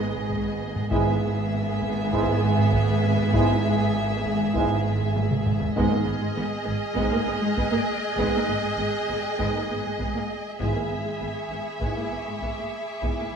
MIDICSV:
0, 0, Header, 1, 11, 480
1, 0, Start_track
1, 0, Tempo, 606061
1, 719, Time_signature, 4, 2, 24, 8
1, 10580, End_track
2, 0, Start_track
2, 0, Title_t, "Violin section"
2, 0, Program_c, 0, 48
2, 0, Note_on_c, 0, 83, 48
2, 0, Note_on_c, 0, 85, 49
2, 444, Note_off_c, 0, 83, 0
2, 444, Note_off_c, 0, 85, 0
2, 4568, Note_on_c, 0, 89, 55
2, 4578, Note_on_c, 0, 87, 60
2, 5530, Note_on_c, 0, 90, 52
2, 7652, Note_off_c, 0, 89, 0
2, 8133, Note_off_c, 0, 90, 0
2, 8137, Note_off_c, 0, 87, 0
2, 8411, Note_on_c, 0, 83, 37
2, 8887, Note_on_c, 0, 85, 34
2, 9375, Note_on_c, 0, 86, 29
2, 10580, Note_off_c, 0, 83, 0
2, 10580, Note_off_c, 0, 85, 0
2, 10580, Note_off_c, 0, 86, 0
2, 10580, End_track
3, 0, Start_track
3, 0, Title_t, "Violin section"
3, 0, Program_c, 1, 48
3, 0, Note_on_c, 1, 75, 68
3, 692, Note_off_c, 1, 75, 0
3, 723, Note_on_c, 1, 76, 71
3, 4529, Note_off_c, 1, 76, 0
3, 4566, Note_on_c, 1, 75, 73
3, 8371, Note_off_c, 1, 75, 0
3, 8400, Note_on_c, 1, 76, 51
3, 10580, Note_off_c, 1, 76, 0
3, 10580, End_track
4, 0, Start_track
4, 0, Title_t, "Violin section"
4, 0, Program_c, 2, 48
4, 0, Note_on_c, 2, 68, 72
4, 689, Note_off_c, 2, 68, 0
4, 718, Note_on_c, 2, 68, 69
4, 4527, Note_off_c, 2, 68, 0
4, 4556, Note_on_c, 2, 68, 72
4, 8366, Note_off_c, 2, 68, 0
4, 8393, Note_on_c, 2, 68, 50
4, 10580, Note_off_c, 2, 68, 0
4, 10580, End_track
5, 0, Start_track
5, 0, Title_t, "French horn section"
5, 0, Program_c, 3, 60
5, 723, Note_on_c, 3, 59, 66
5, 727, Note_on_c, 3, 64, 74
5, 889, Note_off_c, 3, 59, 0
5, 892, Note_off_c, 3, 64, 0
5, 1684, Note_on_c, 3, 59, 66
5, 1685, Note_on_c, 3, 64, 65
5, 1850, Note_off_c, 3, 59, 0
5, 1850, Note_off_c, 3, 64, 0
5, 2643, Note_on_c, 3, 59, 75
5, 2648, Note_on_c, 3, 64, 81
5, 2809, Note_off_c, 3, 59, 0
5, 2812, Note_off_c, 3, 64, 0
5, 3592, Note_on_c, 3, 59, 66
5, 3593, Note_on_c, 3, 64, 61
5, 3762, Note_off_c, 3, 59, 0
5, 3762, Note_off_c, 3, 64, 0
5, 4568, Note_on_c, 3, 59, 73
5, 4570, Note_on_c, 3, 63, 77
5, 4732, Note_off_c, 3, 59, 0
5, 4733, Note_off_c, 3, 63, 0
5, 5513, Note_on_c, 3, 59, 59
5, 5514, Note_on_c, 3, 63, 58
5, 5683, Note_off_c, 3, 59, 0
5, 5683, Note_off_c, 3, 63, 0
5, 6485, Note_on_c, 3, 59, 61
5, 6487, Note_on_c, 3, 63, 61
5, 6650, Note_off_c, 3, 59, 0
5, 6652, Note_off_c, 3, 63, 0
5, 7438, Note_on_c, 3, 63, 40
5, 7439, Note_on_c, 3, 59, 44
5, 7606, Note_off_c, 3, 59, 0
5, 7606, Note_off_c, 3, 63, 0
5, 8396, Note_on_c, 3, 59, 44
5, 8397, Note_on_c, 3, 64, 48
5, 8565, Note_off_c, 3, 59, 0
5, 8565, Note_off_c, 3, 64, 0
5, 9362, Note_on_c, 3, 64, 34
5, 9367, Note_on_c, 3, 59, 34
5, 9528, Note_off_c, 3, 64, 0
5, 9531, Note_off_c, 3, 59, 0
5, 10315, Note_on_c, 3, 64, 30
5, 10317, Note_on_c, 3, 59, 31
5, 10484, Note_off_c, 3, 64, 0
5, 10485, Note_off_c, 3, 59, 0
5, 10580, End_track
6, 0, Start_track
6, 0, Title_t, "Viola section"
6, 0, Program_c, 4, 48
6, 0, Note_on_c, 4, 59, 67
6, 691, Note_off_c, 4, 59, 0
6, 720, Note_on_c, 4, 59, 76
6, 4528, Note_off_c, 4, 59, 0
6, 4557, Note_on_c, 4, 59, 77
6, 4606, Note_off_c, 4, 59, 0
6, 4677, Note_on_c, 4, 58, 58
6, 4725, Note_off_c, 4, 58, 0
6, 4796, Note_on_c, 4, 59, 57
6, 4844, Note_off_c, 4, 59, 0
6, 4912, Note_on_c, 4, 56, 57
6, 4962, Note_off_c, 4, 56, 0
6, 5032, Note_on_c, 4, 59, 89
6, 5082, Note_off_c, 4, 59, 0
6, 5262, Note_on_c, 4, 59, 58
6, 5313, Note_off_c, 4, 59, 0
6, 5504, Note_on_c, 4, 59, 72
6, 5555, Note_off_c, 4, 59, 0
6, 5638, Note_on_c, 4, 58, 51
6, 5686, Note_off_c, 4, 58, 0
6, 5757, Note_on_c, 4, 59, 51
6, 5805, Note_off_c, 4, 59, 0
6, 5870, Note_on_c, 4, 56, 58
6, 5920, Note_off_c, 4, 56, 0
6, 5992, Note_on_c, 4, 59, 78
6, 6041, Note_off_c, 4, 59, 0
6, 6108, Note_on_c, 4, 58, 54
6, 6158, Note_off_c, 4, 58, 0
6, 6479, Note_on_c, 4, 59, 76
6, 6527, Note_off_c, 4, 59, 0
6, 6612, Note_on_c, 4, 58, 48
6, 6657, Note_off_c, 4, 58, 0
6, 6716, Note_on_c, 4, 59, 41
6, 6765, Note_off_c, 4, 59, 0
6, 6837, Note_on_c, 4, 56, 45
6, 6885, Note_off_c, 4, 56, 0
6, 6955, Note_on_c, 4, 59, 58
6, 7003, Note_off_c, 4, 59, 0
6, 7194, Note_on_c, 4, 59, 41
6, 7243, Note_off_c, 4, 59, 0
6, 7430, Note_on_c, 4, 59, 62
6, 7480, Note_off_c, 4, 59, 0
6, 7561, Note_on_c, 4, 58, 45
6, 7608, Note_off_c, 4, 58, 0
6, 7674, Note_on_c, 4, 59, 47
6, 7723, Note_off_c, 4, 59, 0
6, 7799, Note_on_c, 4, 56, 44
6, 7847, Note_off_c, 4, 56, 0
6, 7909, Note_on_c, 4, 59, 61
6, 7959, Note_off_c, 4, 59, 0
6, 8029, Note_on_c, 4, 58, 41
6, 8079, Note_off_c, 4, 58, 0
6, 8386, Note_on_c, 4, 59, 53
6, 8436, Note_off_c, 4, 59, 0
6, 8511, Note_on_c, 4, 58, 30
6, 8560, Note_off_c, 4, 58, 0
6, 8627, Note_on_c, 4, 59, 36
6, 8677, Note_off_c, 4, 59, 0
6, 8744, Note_on_c, 4, 56, 38
6, 8795, Note_off_c, 4, 56, 0
6, 8861, Note_on_c, 4, 59, 47
6, 8912, Note_off_c, 4, 59, 0
6, 9116, Note_on_c, 4, 59, 34
6, 9165, Note_off_c, 4, 59, 0
6, 9345, Note_on_c, 4, 59, 45
6, 9396, Note_off_c, 4, 59, 0
6, 9471, Note_on_c, 4, 58, 31
6, 9520, Note_off_c, 4, 58, 0
6, 9593, Note_on_c, 4, 59, 31
6, 9642, Note_off_c, 4, 59, 0
6, 9713, Note_on_c, 4, 56, 34
6, 9762, Note_off_c, 4, 56, 0
6, 9832, Note_on_c, 4, 59, 39
6, 9881, Note_off_c, 4, 59, 0
6, 9957, Note_on_c, 4, 58, 35
6, 10005, Note_off_c, 4, 58, 0
6, 10308, Note_on_c, 4, 59, 34
6, 10358, Note_off_c, 4, 59, 0
6, 10445, Note_on_c, 4, 58, 21
6, 10492, Note_off_c, 4, 58, 0
6, 10580, End_track
7, 0, Start_track
7, 0, Title_t, "Trombone section"
7, 0, Program_c, 5, 61
7, 721, Note_on_c, 5, 44, 63
7, 728, Note_on_c, 5, 56, 71
7, 888, Note_off_c, 5, 44, 0
7, 892, Note_off_c, 5, 56, 0
7, 1683, Note_on_c, 5, 44, 84
7, 1687, Note_on_c, 5, 56, 73
7, 1849, Note_off_c, 5, 44, 0
7, 1852, Note_off_c, 5, 56, 0
7, 2642, Note_on_c, 5, 56, 68
7, 2645, Note_on_c, 5, 44, 78
7, 2808, Note_off_c, 5, 56, 0
7, 2810, Note_off_c, 5, 44, 0
7, 3605, Note_on_c, 5, 56, 79
7, 3606, Note_on_c, 5, 44, 75
7, 3770, Note_off_c, 5, 56, 0
7, 3771, Note_off_c, 5, 44, 0
7, 4564, Note_on_c, 5, 56, 65
7, 4567, Note_on_c, 5, 44, 67
7, 4730, Note_off_c, 5, 56, 0
7, 4732, Note_off_c, 5, 44, 0
7, 5516, Note_on_c, 5, 56, 69
7, 5517, Note_on_c, 5, 44, 67
7, 5684, Note_off_c, 5, 56, 0
7, 5685, Note_off_c, 5, 44, 0
7, 6474, Note_on_c, 5, 44, 51
7, 6482, Note_on_c, 5, 56, 64
7, 6643, Note_off_c, 5, 44, 0
7, 6648, Note_off_c, 5, 56, 0
7, 7438, Note_on_c, 5, 56, 58
7, 7442, Note_on_c, 5, 44, 52
7, 7606, Note_off_c, 5, 56, 0
7, 7609, Note_off_c, 5, 44, 0
7, 8403, Note_on_c, 5, 56, 52
7, 8404, Note_on_c, 5, 44, 47
7, 8569, Note_off_c, 5, 56, 0
7, 8570, Note_off_c, 5, 44, 0
7, 9354, Note_on_c, 5, 56, 44
7, 9360, Note_on_c, 5, 44, 43
7, 9523, Note_off_c, 5, 56, 0
7, 9527, Note_off_c, 5, 44, 0
7, 10312, Note_on_c, 5, 44, 28
7, 10313, Note_on_c, 5, 56, 28
7, 10482, Note_off_c, 5, 44, 0
7, 10482, Note_off_c, 5, 56, 0
7, 10580, End_track
8, 0, Start_track
8, 0, Title_t, "Cello section"
8, 0, Program_c, 6, 48
8, 0, Note_on_c, 6, 44, 62
8, 689, Note_off_c, 6, 44, 0
8, 719, Note_on_c, 6, 44, 78
8, 4527, Note_off_c, 6, 44, 0
8, 4558, Note_on_c, 6, 44, 90
8, 4606, Note_off_c, 6, 44, 0
8, 4672, Note_on_c, 6, 44, 52
8, 4721, Note_off_c, 6, 44, 0
8, 4791, Note_on_c, 6, 44, 61
8, 4841, Note_off_c, 6, 44, 0
8, 4915, Note_on_c, 6, 44, 58
8, 4964, Note_off_c, 6, 44, 0
8, 5034, Note_on_c, 6, 44, 84
8, 5083, Note_off_c, 6, 44, 0
8, 5267, Note_on_c, 6, 44, 57
8, 5318, Note_off_c, 6, 44, 0
8, 5513, Note_on_c, 6, 44, 70
8, 5562, Note_off_c, 6, 44, 0
8, 5634, Note_on_c, 6, 44, 50
8, 5683, Note_off_c, 6, 44, 0
8, 5744, Note_on_c, 6, 44, 53
8, 5795, Note_off_c, 6, 44, 0
8, 5869, Note_on_c, 6, 44, 58
8, 5919, Note_off_c, 6, 44, 0
8, 5992, Note_on_c, 6, 44, 72
8, 6042, Note_off_c, 6, 44, 0
8, 6109, Note_on_c, 6, 44, 47
8, 6159, Note_off_c, 6, 44, 0
8, 6470, Note_on_c, 6, 44, 76
8, 6519, Note_off_c, 6, 44, 0
8, 6593, Note_on_c, 6, 44, 47
8, 6642, Note_off_c, 6, 44, 0
8, 6707, Note_on_c, 6, 44, 53
8, 6757, Note_off_c, 6, 44, 0
8, 6839, Note_on_c, 6, 44, 49
8, 6887, Note_off_c, 6, 44, 0
8, 6955, Note_on_c, 6, 44, 64
8, 7004, Note_off_c, 6, 44, 0
8, 7203, Note_on_c, 6, 44, 52
8, 7250, Note_off_c, 6, 44, 0
8, 7437, Note_on_c, 6, 44, 55
8, 7486, Note_off_c, 6, 44, 0
8, 7555, Note_on_c, 6, 44, 45
8, 7604, Note_off_c, 6, 44, 0
8, 7677, Note_on_c, 6, 44, 41
8, 7725, Note_off_c, 6, 44, 0
8, 7798, Note_on_c, 6, 44, 45
8, 7846, Note_off_c, 6, 44, 0
8, 7916, Note_on_c, 6, 44, 58
8, 7964, Note_off_c, 6, 44, 0
8, 8038, Note_on_c, 6, 44, 41
8, 8086, Note_off_c, 6, 44, 0
8, 8391, Note_on_c, 6, 44, 57
8, 8441, Note_off_c, 6, 44, 0
8, 8515, Note_on_c, 6, 44, 34
8, 8564, Note_off_c, 6, 44, 0
8, 8633, Note_on_c, 6, 44, 40
8, 8682, Note_off_c, 6, 44, 0
8, 8750, Note_on_c, 6, 44, 38
8, 8799, Note_off_c, 6, 44, 0
8, 8871, Note_on_c, 6, 44, 50
8, 8920, Note_off_c, 6, 44, 0
8, 9118, Note_on_c, 6, 44, 36
8, 9166, Note_off_c, 6, 44, 0
8, 9353, Note_on_c, 6, 44, 42
8, 9402, Note_off_c, 6, 44, 0
8, 9474, Note_on_c, 6, 44, 30
8, 9523, Note_off_c, 6, 44, 0
8, 9592, Note_on_c, 6, 44, 31
8, 9641, Note_off_c, 6, 44, 0
8, 9710, Note_on_c, 6, 44, 32
8, 9760, Note_off_c, 6, 44, 0
8, 9833, Note_on_c, 6, 44, 43
8, 9882, Note_off_c, 6, 44, 0
8, 9957, Note_on_c, 6, 44, 26
8, 10006, Note_off_c, 6, 44, 0
8, 10312, Note_on_c, 6, 44, 35
8, 10361, Note_off_c, 6, 44, 0
8, 10443, Note_on_c, 6, 44, 23
8, 10490, Note_off_c, 6, 44, 0
8, 10580, End_track
9, 0, Start_track
9, 0, Title_t, "Timpani"
9, 0, Program_c, 7, 47
9, 717, Note_on_c, 7, 44, 78
9, 1406, Note_off_c, 7, 44, 0
9, 4562, Note_on_c, 7, 44, 76
9, 5249, Note_off_c, 7, 44, 0
9, 8400, Note_on_c, 7, 44, 58
9, 9088, Note_off_c, 7, 44, 0
9, 10580, End_track
10, 0, Start_track
10, 0, Title_t, "Double bass section"
10, 0, Program_c, 8, 48
10, 0, Note_on_c, 8, 32, 66
10, 689, Note_off_c, 8, 32, 0
10, 723, Note_on_c, 8, 32, 77
10, 4529, Note_off_c, 8, 32, 0
10, 4565, Note_on_c, 8, 32, 80
10, 4612, Note_off_c, 8, 32, 0
10, 4805, Note_on_c, 8, 32, 61
10, 4851, Note_off_c, 8, 32, 0
10, 5043, Note_on_c, 8, 32, 75
10, 5090, Note_off_c, 8, 32, 0
10, 5277, Note_on_c, 8, 32, 59
10, 5325, Note_off_c, 8, 32, 0
10, 5512, Note_on_c, 8, 32, 74
10, 5561, Note_off_c, 8, 32, 0
10, 5761, Note_on_c, 8, 32, 54
10, 5808, Note_off_c, 8, 32, 0
10, 6000, Note_on_c, 8, 32, 66
10, 6048, Note_off_c, 8, 32, 0
10, 6474, Note_on_c, 8, 32, 67
10, 6523, Note_off_c, 8, 32, 0
10, 6722, Note_on_c, 8, 32, 46
10, 6770, Note_off_c, 8, 32, 0
10, 6958, Note_on_c, 8, 32, 62
10, 7006, Note_off_c, 8, 32, 0
10, 7201, Note_on_c, 8, 32, 52
10, 7248, Note_off_c, 8, 32, 0
10, 7441, Note_on_c, 8, 32, 62
10, 7488, Note_off_c, 8, 32, 0
10, 7681, Note_on_c, 8, 32, 42
10, 7729, Note_off_c, 8, 32, 0
10, 7914, Note_on_c, 8, 32, 54
10, 7963, Note_off_c, 8, 32, 0
10, 8397, Note_on_c, 8, 32, 54
10, 8446, Note_off_c, 8, 32, 0
10, 8641, Note_on_c, 8, 32, 34
10, 8689, Note_off_c, 8, 32, 0
10, 8879, Note_on_c, 8, 32, 45
10, 8927, Note_off_c, 8, 32, 0
10, 9114, Note_on_c, 8, 32, 40
10, 9163, Note_off_c, 8, 32, 0
10, 9353, Note_on_c, 8, 32, 51
10, 9402, Note_off_c, 8, 32, 0
10, 9591, Note_on_c, 8, 32, 28
10, 9641, Note_off_c, 8, 32, 0
10, 9833, Note_on_c, 8, 32, 35
10, 9882, Note_off_c, 8, 32, 0
10, 10317, Note_on_c, 8, 32, 35
10, 10366, Note_off_c, 8, 32, 0
10, 10551, Note_on_c, 8, 32, 23
10, 10580, Note_off_c, 8, 32, 0
10, 10580, End_track
11, 0, Start_track
11, 0, Title_t, "Taiko and cinematic ensemble drums"
11, 121, Note_on_c, 9, 45, 46
11, 200, Note_off_c, 9, 45, 0
11, 237, Note_on_c, 9, 41, 79
11, 316, Note_off_c, 9, 41, 0
11, 600, Note_on_c, 9, 45, 51
11, 680, Note_off_c, 9, 45, 0
11, 721, Note_on_c, 9, 41, 89
11, 800, Note_off_c, 9, 41, 0
11, 1441, Note_on_c, 9, 45, 52
11, 1521, Note_off_c, 9, 45, 0
11, 1683, Note_on_c, 9, 41, 83
11, 1762, Note_off_c, 9, 41, 0
11, 2044, Note_on_c, 9, 45, 48
11, 2124, Note_off_c, 9, 45, 0
11, 2160, Note_on_c, 9, 41, 86
11, 2239, Note_off_c, 9, 41, 0
11, 2526, Note_on_c, 9, 45, 52
11, 2605, Note_off_c, 9, 45, 0
11, 2642, Note_on_c, 9, 41, 94
11, 2721, Note_off_c, 9, 41, 0
11, 3367, Note_on_c, 9, 45, 54
11, 3446, Note_off_c, 9, 45, 0
11, 3607, Note_on_c, 9, 41, 92
11, 3686, Note_off_c, 9, 41, 0
11, 3968, Note_on_c, 9, 45, 39
11, 4048, Note_off_c, 9, 45, 0
11, 4088, Note_on_c, 9, 48, 86
11, 4167, Note_off_c, 9, 48, 0
11, 4209, Note_on_c, 9, 47, 77
11, 4288, Note_off_c, 9, 47, 0
11, 4326, Note_on_c, 9, 45, 81
11, 4405, Note_off_c, 9, 45, 0
11, 4440, Note_on_c, 9, 43, 90
11, 4519, Note_off_c, 9, 43, 0
11, 4564, Note_on_c, 9, 41, 94
11, 4643, Note_off_c, 9, 41, 0
11, 5522, Note_on_c, 9, 41, 86
11, 5601, Note_off_c, 9, 41, 0
11, 5998, Note_on_c, 9, 41, 75
11, 6077, Note_off_c, 9, 41, 0
11, 6481, Note_on_c, 9, 41, 82
11, 6560, Note_off_c, 9, 41, 0
11, 7440, Note_on_c, 9, 41, 74
11, 7519, Note_off_c, 9, 41, 0
11, 7921, Note_on_c, 9, 41, 72
11, 8000, Note_off_c, 9, 41, 0
11, 8395, Note_on_c, 9, 41, 75
11, 8475, Note_off_c, 9, 41, 0
11, 9357, Note_on_c, 9, 41, 66
11, 9436, Note_off_c, 9, 41, 0
11, 9837, Note_on_c, 9, 41, 58
11, 9916, Note_off_c, 9, 41, 0
11, 10317, Note_on_c, 9, 41, 70
11, 10396, Note_off_c, 9, 41, 0
11, 10580, End_track
0, 0, End_of_file